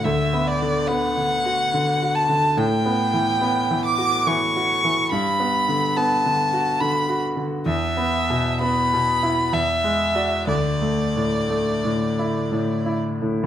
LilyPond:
<<
  \new Staff \with { instrumentName = "Violin" } { \time 3/4 \key d \major \tempo 4 = 70 e''8 d''8 fis''4. a''8 | g''4. d'''8 cis'''4 | b''4 a''4 b''8 r8 | e''4 b''4 e''4 |
d''2~ d''8 r8 | }
  \new Staff \with { instrumentName = "Grand piano" } { \clef bass \time 3/4 \key d \major \tuplet 3/2 { d,8 b8 d8 b8 d8 fis'8 d8 fis'8 d8 } | \tuplet 3/2 { a,8 b8 e8 b8 e8 fis'8 e8 fis'8 e8 } | \tuplet 3/2 { g,8 b8 d8 b8 d8 fis'8 d8 fis'8 d8 } | \tuplet 3/2 { e,8 b8 b,8 b8 b,8 e'8 e,8 gis8 <fis' d''>8 } |
\tuplet 3/2 { d,8 a8 a,8 a8 a,8 e'8 a,8 e'8 a,8 } | }
>>